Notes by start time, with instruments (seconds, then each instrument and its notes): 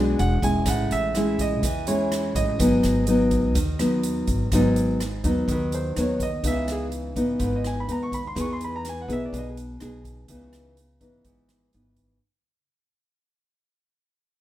Already playing: upright bass B1, nylon-string guitar B2 G#3 D4 F#4, grand piano G#5
0.19 upright bass E1, grand piano F#5, closed hi-hat
0.42 upright bass E1, nylon-string guitar G#3 C#4 E4, grand piano G#5, kick, closed hi-hat
0.66 upright bass A1, nylon-string guitar A2, grand piano F#5, kick, cross-stick, closed hi-hat
0.91 upright bass A1, grand piano E5, closed hi-hat
1.15 nylon-string guitar G#3 C#4 E4, cross-stick, closed hi-hat
1.39 grand piano D#5, kick, closed hi-hat
1.63 upright bass E2, nylon-string guitar E3, kick, closed hi-hat
1.87 nylon-string guitar G#3 C#4 E4, grand piano C#5, closed hi-hat
2.12 cross-stick, closed hi-hat
2.35 upright bass A1, grand piano D#5, kick, closed hi-hat
2.59 upright bass G#1, nylon-string guitar G#2 F#3 B3 D#4, kick, closed hi-hat
2.83 upright bass G#1, cross-stick, closed hi-hat
3.07 nylon-string guitar F#3 B3 D#4, closed hi-hat
3.31 kick, closed hi-hat
3.55 upright bass D#2, nylon-string guitar D#3, kick, closed hi-hat
3.79 nylon-string guitar F#3 B3 D#4, cross-stick, closed hi-hat
4.03 closed hi-hat
4.27 upright bass G#1, kick, closed hi-hat
4.52 upright bass G#1, nylon-string guitar G#2 F#3 B3 D#4, kick, cross-stick, closed hi-hat
4.76 closed hi-hat
5.00 cross-stick, closed hi-hat
5.24 upright bass D#2, nylon-string guitar F#3 B3 D#4, kick, closed hi-hat
5.48 upright bass D#2, nylon-string guitar D#3, kick, closed hi-hat
5.52 grand piano B4
5.72 grand piano C5, closed hi-hat
5.96 upright bass D#2, nylon-string guitar F#3 B3 D#4, cross-stick, closed hi-hat
6.00 grand piano C#5
6.20 grand piano D#5, kick, closed hi-hat
6.44 upright bass C#2, nylon-string guitar C#3 E3 B3 D#4, grand piano E5, kick, closed hi-hat
6.68 grand piano G#4, cross-stick, closed hi-hat
6.92 closed hi-hat
7.16 upright bass G#1, nylon-string guitar E3 B3 D#4, kick, closed hi-hat
7.39 upright bass G#1, nylon-string guitar G#2, kick, closed hi-hat
7.44 grand piano B4
7.56 grand piano D#5
7.64 grand piano G#5, cross-stick, closed hi-hat
7.80 grand piano B5
7.88 upright bass D#2, nylon-string guitar B3 D#4, grand piano A#5, closed hi-hat
8.03 grand piano C#6
8.12 grand piano B5, kick, closed hi-hat
8.27 grand piano C6
8.35 upright bass E2, nylon-string guitar E3 B3 D#4 G#4, kick, cross-stick, closed hi-hat
8.41 grand piano C#6
8.53 grand piano C6
8.61 grand piano B5, closed hi-hat
8.76 grand piano A#5
8.85 cross-stick, closed hi-hat
8.89 grand piano G#5
9.02 grand piano F#5
9.08 upright bass B1, nylon-string guitar B3 D#4 G#4, kick, closed hi-hat
9.13 grand piano E5
9.26 grand piano D5
9.33 upright bass B1, nylon-string guitar B2, kick, closed hi-hat
9.38 grand piano D#5
9.49 grand piano G#4
9.57 closed hi-hat
9.80 upright bass B1, nylon-string guitar B3 D#4 G#4, cross-stick, closed hi-hat
10.05 kick, closed hi-hat
10.28 upright bass C#2, nylon-string guitar C#3 E3 B3 D#4, kick, closed hi-hat
10.53 cross-stick, closed hi-hat
10.77 closed hi-hat
11.00 upright bass G#1, nylon-string guitar E3 B3 D#4, kick, closed hi-hat
11.25 upright bass G#1, nylon-string guitar G#2, kick, closed hi-hat
11.49 cross-stick, closed hi-hat
11.73 upright bass G#1, nylon-string guitar E3 B3 D#4, closed hi-hat
11.96 kick, closed hi-hat